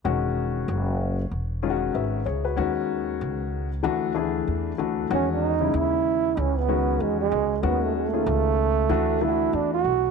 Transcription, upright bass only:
X:1
M:4/4
L:1/8
Q:"Swing 16ths" 1/4=95
K:E
V:1 name="Upright bass" clef=bass
E,,,2 F,,,2 E,,,2 G,,, C,, | D,,2 C,,2 =D,,2 E,, D,, | E,,2 D,,2 C,,2 E,, C,, | D,,2 C,,2 =D,,2 E,, B,,, |]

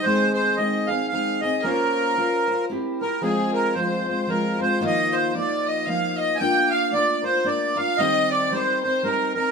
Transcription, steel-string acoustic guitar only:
X:1
M:3/4
L:1/8
Q:"Swing" 1/4=113
K:Ab
V:1 name="Steel-string acoustic guitar"
[A,CEA]2 [A,CEA] [CEA] [A,CEA] [CEA] | [B,DFBc]2 [DFBc] [FBc] [C=EGB] [EGB] | [K:Fdor] [F,A,CF]2 [F,A,CF] [A,CF] [F,A,CF] [A,CF] | [E,F,B,EF]2 [F,B,EF]2 [F,B,EF]2 |
[B,DFB]2 [B,DFB] [DFB] [B,DFB] [DFB] | [E,G,CEB]2 [G,CEB] [CEB] [G,CEB] [CEB] |]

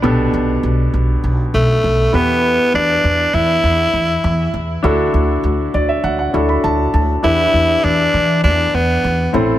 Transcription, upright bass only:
X:1
M:4/4
L:1/8
Q:1/4=100
K:Em
V:1 name="Upright bass" clef=bass
B,,, B,,, B,,, B,,, B,,, B,,, B,,, E,,- | E,, E,, E,, E,, E,, E,, E,, E,, | D,, D,, D,, D,, D,, D,, D,, D,, | E,, E,, E,, E, E,, E,, E,, A,,, |]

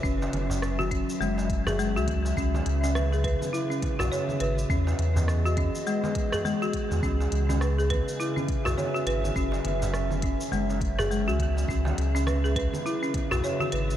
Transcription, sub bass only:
X:1
M:4/4
L:1/16
Q:"Swing 16ths" 1/4=103
K:C#m
V:1 name="Sub bass" clef=bass
F,,,2 F,,,4- F,,, z F,,,4- F,,, C,,3 | C,,2 C,,4- C,, z4 B,,, z2 G,,,2 | E,,2 E,,4- E,, z8 E,, | C,,2 C,,4- C,, z4 B,,, z2 G,,,2 |
F,,,2 F,,,4- F,,, z F,,,4- F,,, C,,3 | C,,2 C,,4- C,, z4 B,,, z2 G,,,2 |]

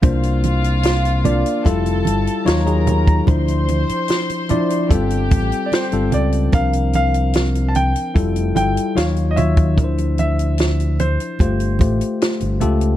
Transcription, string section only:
X:1
M:4/4
L:1/8
Q:1/4=74
K:Cmix
V:1 name="String section"
[Ff]4 [Aa]2 [Bb]2 | [cc']4 [Gg]4 | z8 | z8 |]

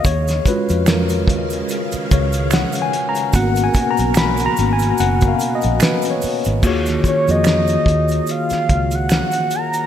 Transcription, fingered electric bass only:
X:1
M:4/4
L:1/16
Q:"Swing 16ths" 1/4=73
K:Ebm
V:1 name="Fingered electric bass" clef=bass
E,,2 z F,,3 E,,2 z2 D,,3 z3 | A,,,2 z C,,3 A,,,2 G,,,2 z B,,, z3 A,,, | E,,2 z F,,3 E,,2 z2 D,,3 z3 |]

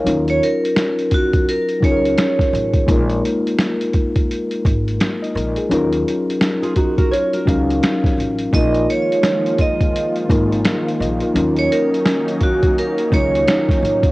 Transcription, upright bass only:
X:1
M:4/4
L:1/16
Q:"Swing 16ths" 1/4=85
K:Ebm
V:1 name="Upright bass" clef=bass
E,,2 z8 D,,2 z2 =A,,,2 | B,,,2 z8 A,,,2 z2 B,,, z | E,,2 z8 D,,2 z2 =A,,,2 | B,,,2 z8 A,,,2 z2 B,,, z |
E,,2 z8 D,,2 z2 =A,,,2 |]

